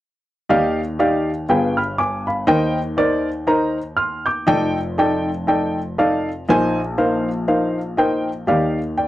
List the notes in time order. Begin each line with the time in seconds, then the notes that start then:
0.49 D#2 D#3 D#4 G4 D5 F5
0.99 D#4 G4 D5 F5
1.49 G1 G2 F4 G#4 B4 G5
1.77 B5 F6
1.98 G#5 D6
2.27 F5 B5
2.47 D#2 D#3 D#4 A#4 C5 G5
2.97 D#4 A#4 C5 D5
3.47 D#4 A#4 C5 A#5
3.97 C6 F6
4.26 D6 G6
4.47 F1 F2 D#4 A4 D5 G5
4.98 D#4 A4 D5 G5
5.47 D#4 A4 D5 G5
5.98 D#4 A4 D5 F5
6.49 A#1 A#2 D#4 A#4 C5 G#5
6.98 D#4 A#4 C5 F5
7.48 D#4 A#4 C5 F5
7.97 D#4 A#4 C5 G5
8.47 D#2 D#3 D#4 G4 D5 F5
8.98 D5 G5